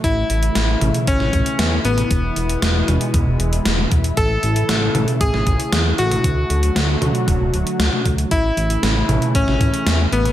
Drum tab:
HH |x-xxx-xxx-xxx-xx|x-xxx-xxx-xxx-xx|x-xxx-xxx-xxx-xx|x-xxx-xxx-xxx-xx|
SD |----o----o--o---|----o-------o---|----o----o--o---|----o-------o---|
T2 |------o--o-----o|------o-o----o--|------o--o-----o|------o-o----o--|
BD |o-------o-o-----|o-------o-----o-|o-------o-o-----|o-------o-----o-|

HH |x-xxx-xxx-xxx-xx|
SD |----o----o--o---|
T2 |------o--o-----o|
BD |o-------o-o-----|